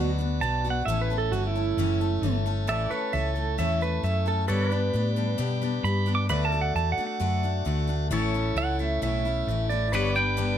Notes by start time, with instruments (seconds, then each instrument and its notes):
Already playing: fingered electric bass D2, steel-string acoustic guitar B2 F#3 B3 D4 F#4, pedal steel guitar F#4, tonewheel organ F#4 B4 D5
0.18 steel-string acoustic guitar B3 D4 F#4
0.41 fingered electric bass B1, steel-string acoustic guitar F#3 B3 D4 F#4, pedal steel guitar A5
0.64 steel-string acoustic guitar B3 D4 F#4
0.70 pedal steel guitar F#5
0.85 fingered electric bass A1, steel-string acoustic guitar A2 E3 A3, tonewheel organ E4 A4 C#5, pedal steel guitar E5
0.90 steel-string acoustic guitar C#4 A4
1.01 pedal steel guitar B4
1.10 steel-string acoustic guitar A3 C#4 A4
1.18 pedal steel guitar A4
1.32 fingered electric bass G1, steel-string acoustic guitar E3 A3 C#4 A4, pedal steel guitar F#4
1.47 pedal steel guitar E4
1.55 steel-string acoustic guitar A3 C#4 A4
1.77 fingered electric bass F#1, steel-string acoustic guitar A2 E3 A3 C#4 A4
2.01 steel-string acoustic guitar A3 C#4 A4
2.22 fingered electric bass G1, steel-string acoustic guitar E3 A3 C#4 A4
2.46 steel-string acoustic guitar A3 C#4 A4
2.67 fingered electric bass A1, steel-string acoustic guitar A2 E3 A3 C#4 A4, pedal steel guitar A4 D5 E5
2.90 steel-string acoustic guitar A3 C#4 A4, pedal steel guitar B4 C#5, muted fingered electric bass stroke
3.13 fingered electric bass C#2, steel-string acoustic guitar E3 A3 C#4 A4, pedal steel guitar E5
3.35 steel-string acoustic guitar A3 C#4 A4, pedal steel guitar A4
3.58 fingered electric bass E2, steel-string acoustic guitar A2 E3 A3 C#4 A4, pedal steel guitar E5
3.81 steel-string acoustic guitar A3 C#4 A4, pedal steel guitar B4
4.03 fingered electric bass F#2, steel-string acoustic guitar E3 A3 C#4 A4, pedal steel guitar E5
4.26 steel-string acoustic guitar A3 C#4 A4, pedal steel guitar A4
4.47 steel-string acoustic guitar G2 D3 G3 B3 D4 G4, fingered electric bass G2, tonewheel organ G4 B4 D5, pedal steel guitar A4 B4 C#5
4.69 steel-string acoustic guitar G3 B3 D4 G4, pedal steel guitar D5
4.73 pedal steel guitar B4
4.93 fingered electric bass A2, steel-string acoustic guitar G3 B3 D4 G4
5.16 steel-string acoustic guitar G3 B3 D4 G4
5.38 steel-string acoustic guitar G2 D3 G3 B3 D4 G4, fingered electric bass B2
5.62 steel-string acoustic guitar G3 B3 D4 G4
5.84 fingered electric bass G2, steel-string acoustic guitar G3 B3 D4 G4, pedal steel guitar B5
6.06 steel-string acoustic guitar G3 B3 D4 G4
6.15 pedal steel guitar D6
6.29 fingered electric bass D2, steel-string acoustic guitar D3 A3 D4 F#4, tonewheel organ F#4 A4 D5, pedal steel guitar B4 D5 B5
6.45 pedal steel guitar A5
6.52 steel-string acoustic guitar A3 D4 F#4, pedal steel guitar A4
6.61 pedal steel guitar F#5
6.75 fingered electric bass E2, steel-string acoustic guitar D3 A3 D4 F#4, pedal steel guitar A5
6.92 pedal steel guitar F#5
6.97 steel-string acoustic guitar A3 D4 F#4, muted fingered electric bass stroke
7.07 pedal steel guitar F#5
7.20 fingered electric bass F#2, steel-string acoustic guitar D3 A3 D4 F#4
7.43 steel-string acoustic guitar A3 D4 F#4
7.65 fingered electric bass D2, steel-string acoustic guitar D3 A3 D4 F#4
7.87 steel-string acoustic guitar A3 D4 F#4
8.10 fingered electric bass A1, steel-string acoustic guitar A2 E3 A3 C#4 E4, tonewheel organ E4 A4 C#5, pedal steel guitar A4 C#5
8.34 steel-string acoustic guitar A3 C#4 E4
8.55 fingered electric bass C#2, steel-string acoustic guitar E3 A3 C#4 E4, pedal steel guitar F#5
8.79 steel-string acoustic guitar A3 C#4 E4, pedal steel guitar E5
9.02 fingered electric bass B1, steel-string acoustic guitar A2 E3 A3 C#4 E4, pedal steel guitar E5
9.25 steel-string acoustic guitar A3 C#4 E4
9.47 fingered electric bass A1, steel-string acoustic guitar E3 A3 C#4
9.51 steel-string acoustic guitar E4
9.69 steel-string acoustic guitar A3 C#4 E4, pedal steel guitar D5
9.92 fingered electric bass G1, steel-string acoustic guitar G2 D3 G3 B3 D4 G4, tonewheel organ D4 G4 B4 D5, clean electric guitar D4 B4, pedal steel guitar B4 C#5
10.13 steel-string acoustic guitar B3 D4 G4, clean electric guitar B4 G5, pedal steel guitar D5
10.17 steel-string acoustic guitar G3
10.37 steel-string acoustic guitar G2 D3 G3 B3 D4 G4